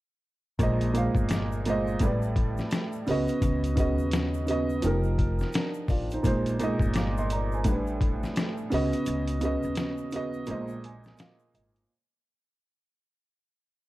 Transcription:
0.59 1.07 A#1 loud
0.59 0.89 A#2 medium
0.59 0.90 G#3 medium
0.59 0.91 C5 medium
0.59 kick loud
0.59 closed hi-hat medium
0.59 shaker medium
0.63 0.92 D#5 medium
0.81 closed hi-hat medium
0.81 shaker soft
0.94 1.55 A#2 medium
0.94 1.55 G#3 medium
0.94 1.56 C5 medium
0.94 1.57 F5 medium
0.94 closed hi-hat medium
0.94 shaker medium
1.15 1.96 G1 loud
1.15 kick loud
1.15 shaker medium
1.29 snare loud
1.29 closed hi-hat medium
1.29 shaker medium
1.52 shaker medium
1.65 2.01 A#2 medium
1.65 2.01 G#3 medium
1.65 2.02 C5 medium
1.65 closed hi-hat medium
1.65 shaker medium
1.70 2.03 D#5 loud
1.87 shaker soft
1.99 2.59 A1 loud
1.99 2.91 A2 medium
1.99 2.92 G3 medium
1.99 2.92 B4 medium
1.99 kick loud
1.99 closed hi-hat medium
1.99 shaker medium
2.05 2.93 D5 medium
2.22 shaker medium
2.36 kick loud
2.36 closed hi-hat medium
2.57 snare soft
2.57 shaker soft
2.71 snare loud
2.71 closed hi-hat medium
2.71 shaker medium
2.92 shaker medium
3.07 3.25 C#2 medium
3.07 3.67 C#3 medium
3.07 3.68 B3 medium
3.07 3.69 F#4 medium
3.07 3.69 D#5 loud
3.07 open hi-hat medium
3.07 shaker soft
3.28 closed hi-hat soft
3.28 shaker soft
3.42 4.00 C#2 loud
3.42 kick loud
3.42 closed hi-hat loud
3.42 shaker medium
3.64 closed hi-hat medium
3.64 shaker soft
3.76 4.37 C#3 medium
3.76 4.38 B3 medium
3.76 4.38 F#4 medium
3.76 kick medium
3.76 closed hi-hat medium
3.76 shaker medium
3.80 4.39 D#5 medium
3.98 4.79 D#2 medium
3.98 shaker medium
4.11 snare loud
4.11 closed hi-hat medium
4.11 shaker medium
4.34 shaker medium
4.47 4.82 C#3 medium
4.47 4.83 B3 medium
4.47 4.84 F#4 medium
4.47 closed hi-hat medium
4.47 shaker medium
4.51 4.84 D#5 loud
4.69 shaker soft
4.82 5.42 F1 loud
4.82 6.00 F3 medium
4.82 5.54 D#4 medium
4.82 5.54 G4 medium
4.82 5.53 A#4 medium
4.82 closed hi-hat medium
4.82 shaker medium
5.04 shaker soft
5.18 kick loud
5.18 closed hi-hat medium
5.39 snare soft
5.39 shaker soft
5.53 5.88 D4 medium
5.53 5.88 A#4 medium
5.53 snare loud
5.53 closed hi-hat medium
5.53 shaker medium
5.74 shaker medium
5.88 6.18 A1 medium
5.88 6.10 F4 medium
5.88 6.10 D5 medium
5.88 kick medium
5.88 open hi-hat medium
5.88 shaker soft
6.11 6.24 D#4 medium
6.11 6.25 C5 medium
6.11 closed hi-hat soft
6.11 shaker soft
6.23 6.72 A#1 loud
6.23 6.54 A#2 medium
6.23 6.54 G#3 medium
6.23 6.55 D#4 medium
6.23 6.56 C5 loud
6.23 kick loud
6.23 closed hi-hat loud
6.23 shaker medium
6.46 closed hi-hat medium
6.46 shaker soft
6.59 7.20 A#2 medium
6.59 7.21 G#3 medium
6.59 7.21 D#4 medium
6.59 6.97 D#5 loud
6.59 closed hi-hat medium
6.59 shaker medium
6.79 7.65 G1 loud
6.79 kick loud
6.79 shaker medium
6.94 7.17 F5 medium
6.94 7.16 D6 medium
6.94 snare loud
6.94 closed hi-hat medium
6.94 shaker medium
7.17 7.30 D#5 medium
7.17 7.30 C6 medium
7.17 shaker medium
7.30 7.52 D5 medium
7.30 7.52 A#5 medium
7.30 closed hi-hat medium
7.30 shaker medium
7.52 7.86 C5 medium
7.52 7.86 G#5 medium
7.52 shaker soft
7.64 8.24 A1 loud
7.64 8.55 A2 medium
7.64 8.56 G3 medium
7.64 8.57 D4 medium
7.64 kick medium
7.64 closed hi-hat medium
7.64 shaker medium
7.68 8.57 B4 medium
7.87 shaker soft
8.01 kick loud
8.01 closed hi-hat medium
8.23 snare soft
8.23 shaker soft
8.36 snare loud
8.36 closed hi-hat medium
8.36 shaker medium
8.57 shaker soft
8.70 8.90 C#2 loud
8.70 9.31 C#3 loud
8.70 9.32 B3 medium
8.70 9.33 F#4 medium
8.70 9.33 D#5 loud
8.70 open hi-hat medium
8.70 shaker medium
8.93 closed hi-hat soft
8.93 shaker soft
9.06 9.55 C#2 loud
9.06 closed hi-hat loud
9.06 shaker medium
9.28 closed hi-hat medium
9.28 shaker soft
9.41 10.02 C#3 loud
9.41 10.03 B3 medium
9.41 10.03 F#4 medium
9.41 closed hi-hat medium
9.41 shaker medium
9.45 10.04 D#5 medium
9.63 10.44 D#2 medium
9.63 shaker medium
9.75 snare loud
9.75 closed hi-hat medium
9.75 shaker medium
9.98 shaker medium
10.11 10.48 C#3 medium
10.11 10.48 B3 medium
10.11 10.49 F#4 medium
10.11 closed hi-hat medium
10.11 shaker medium
10.16 10.49 D#5 loud
10.33 shaker soft
10.46 11.07 A#1 loud
10.46 11.65 A#2 medium
10.46 11.66 G#3 medium
10.46 11.66 C5 medium
10.46 closed hi-hat medium
10.46 shaker medium
10.51 11.53 D#5 medium
10.68 shaker soft
10.84 11.17 G#5 medium
10.84 closed hi-hat medium
11.04 snare soft
11.04 shaker soft
11.17 11.52 F5 medium
11.17 snare loud
11.17 closed hi-hat medium
11.17 shaker medium
11.39 shaker medium
11.54 11.83 G#1 medium
11.54 11.87 D#5 medium
11.54 closed hi-hat medium
11.54 shaker soft
11.76 closed hi-hat soft

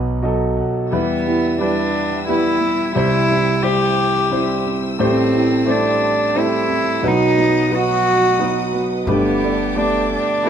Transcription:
0.00 0.60 B1 medium
0.00 0.88 B1 medium
0.00 0.88 B2 medium
0.00 0.22 F#3 medium
0.00 0.24 D#4 medium
0.00 0.93 B4 medium
0.22 0.91 F#3 medium
0.22 0.92 D#4 medium
0.22 0.92 A4 medium
0.22 0.55 D#5 medium
0.57 0.89 F#5 medium
0.90 2.92 E2 medium
0.90 2.92 E3 medium
0.90 1.46 G3 medium
0.90 1.25 G3 medium
0.90 1.57 B3 medium
0.90 1.46 E4 medium
0.90 2.93 B4 medium
0.90 1.47 B4 medium
0.90 4.95 E5 medium
0.90 6.99 G5 medium
0.90 6.99 E6 medium
1.26 1.59 G3 soft
1.26 2.27 B3 medium
1.26 2.27 E4 medium
1.59 2.08 G3 medium
1.59 2.26 G3 medium
1.59 2.24 D4 medium
1.59 2.08 E4 medium
1.59 2.08 B4 medium
2.27 2.94 G3 medium
2.27 2.93 G3 medium
2.27 2.59 B3 medium
2.27 2.92 E4 medium
2.27 2.94 E4 medium
2.27 3.03 E4 medium
2.27 2.96 B4 medium
2.60 3.02 B3 medium
2.95 4.95 C2 medium
2.95 4.95 C3 medium
2.95 3.50 G3 medium
2.95 3.28 G3 medium
2.95 3.64 E4 loud
2.95 3.50 E4 medium
2.95 4.98 C5 medium
2.95 3.51 C5 medium
3.29 3.63 G3 medium
3.29 4.30 C4 medium
3.29 4.31 E4 medium
3.62 4.11 G3 medium
3.62 4.30 G3 medium
3.62 4.12 E4 medium
3.62 4.65 G4 loud
3.62 4.12 C5 medium
4.31 4.99 G3 medium
4.31 4.98 G3 medium
4.31 4.65 C4 medium
4.31 4.99 E4 medium
4.31 5.07 E4 medium
4.31 4.99 C5 medium
4.66 5.06 C4 medium
4.99 6.99 A1 medium
4.99 6.99 A2 medium
4.99 5.32 G3 medium
4.99 5.53 A3 medium
4.99 5.71 C4 medium
4.99 5.54 G4 medium
4.99 7.01 C5 medium
4.99 5.54 C5 medium
4.99 7.01 A5 medium
5.33 5.66 G3 medium
5.33 6.34 C4 medium
5.33 6.35 E4 medium
5.66 6.34 G3 medium
5.66 6.14 A3 medium
5.66 6.40 D4 medium
5.66 6.15 G4 medium
5.66 6.16 C5 medium
6.35 7.03 G3 medium
6.35 7.03 A3 medium
6.35 6.67 C4 medium
6.35 7.11 E4 medium
6.35 7.09 E4 loud
6.35 7.03 G4 medium
6.35 7.03 C5 medium
6.68 7.09 C4 medium
7.02 9.04 B1 medium
7.02 9.03 B2 medium
7.02 7.57 F#3 medium
7.02 7.36 F#3 medium
7.02 7.57 D#4 medium
7.02 10.50 B4 medium
7.02 7.58 B4 medium
7.02 9.05 D#5 medium
7.02 9.05 F#5 medium
7.02 9.05 D#6 medium
7.07 7.76 D#4 loud
7.38 7.70 F#3 medium
7.38 8.38 B3 medium
7.38 8.39 D#4 medium
7.69 8.19 F#3 medium
7.69 8.38 F#3 medium
7.69 8.19 D#4 medium
7.69 8.20 B4 medium
7.75 8.75 F#4 loud
8.38 9.07 F#3 medium
8.38 9.08 F#3 medium
8.38 8.72 B3 medium
8.38 9.07 D#4 medium
8.38 9.15 D#4 medium
8.38 9.07 B4 medium
8.74 9.15 B3 soft
9.07 10.14 G1 medium
9.07 10.50 G1 medium
9.07 10.50 G2 medium
9.07 10.50 G3 medium
9.07 9.62 A3 medium
9.07 9.79 B3 medium
9.07 9.62 G4 medium
9.07 9.63 B4 medium
9.07 10.50 G5 medium
9.07 10.50 A5 medium
9.07 10.50 D6 medium
9.43 9.76 B3 medium
9.43 10.44 D4 medium
9.43 10.45 A4 medium
9.75 10.24 A3 medium
9.75 10.44 B3 medium
9.75 10.11 D4 medium
9.75 10.24 G4 medium
9.75 10.25 D5 medium
10.13 10.48 D4 medium
10.43 10.50 A3 medium
10.43 10.50 B3 medium
10.43 10.50 D4 medium
10.43 10.50 G4 medium
10.43 10.50 A4 medium
10.43 10.50 B4 medium

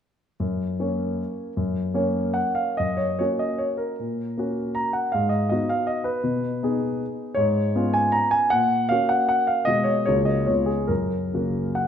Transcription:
0.40 0.79 F#2 soft
0.80 1.52 A#3 soft
0.80 1.52 C#4 soft
0.80 1.53 C#5 soft
1.57 1.94 F#2 medium
1.94 2.74 A#3 soft
1.94 2.74 C#4 soft
1.94 2.74 C#5 medium
2.34 2.56 F#5 medium
2.55 2.77 F5 medium
2.77 3.18 F#2 soft
2.77 2.98 D#5 medium
2.97 3.17 C#5 medium
3.19 3.95 A#3 soft
3.19 3.95 C#4 soft
3.19 3.95 F#4 soft
3.19 3.40 C#5 medium
3.39 3.60 D#5 medium
3.58 3.79 C#5 medium
3.77 4.56 A#4 medium
3.99 4.37 A#2 soft
4.38 5.08 A#3 soft
4.38 5.09 C#4 soft
4.38 5.09 F#4 soft
4.75 4.94 A#5 medium
4.93 5.12 F#5 medium
5.12 5.50 G#2 soft
5.12 5.30 F5 medium
5.29 5.48 D#5 medium
5.49 6.21 B3 soft
5.49 6.21 D#4 soft
5.49 6.21 F#4 soft
5.49 5.70 D#5 medium
5.69 5.88 F5 medium
5.87 6.05 D#5 medium
6.04 6.81 B4 medium
6.24 6.61 B2 soft
6.63 7.33 B3 soft
6.63 7.33 D#4 soft
6.63 7.34 G#4 soft
7.35 7.74 G#2 medium
7.35 7.94 C#5 medium
7.75 8.47 B3 soft
7.75 8.48 C#4 soft
7.75 8.48 F4 soft
7.94 8.13 G#5 medium
8.12 8.32 A#5 medium
8.31 8.50 G#5 medium
8.50 8.90 A#2 medium
8.50 8.90 F#5 medium
8.89 9.64 A#3 soft
8.89 9.64 C#4 soft
8.89 9.65 F#4 soft
8.89 9.10 F5 medium
9.09 9.27 F#5 medium
9.29 9.49 F#5 medium
9.47 9.67 F5 medium
9.65 10.05 B2 medium
9.65 10.03 G#3 soft
9.65 10.03 B3 soft
9.65 10.03 F#4 soft
9.65 9.86 D#5 medium
9.84 10.04 C#5 medium
10.06 10.47 C#2 soft
10.06 10.45 C#3 soft
10.06 10.45 A#3 soft
10.06 10.45 F#4 soft
10.06 10.27 C#5 medium
10.25 10.47 D#5 medium
10.46 10.88 C#2 soft
10.46 10.85 C#3 soft
10.46 10.86 B3 soft
10.46 10.86 F4 soft
10.46 10.68 C#5 medium
10.66 10.88 G#4 medium
10.87 11.32 F#2 soft
10.87 11.88 A#4 medium
11.34 11.88 C#3 soft
11.34 11.88 A#3 soft
11.34 11.88 F#4 soft
11.75 11.88 F#5 medium

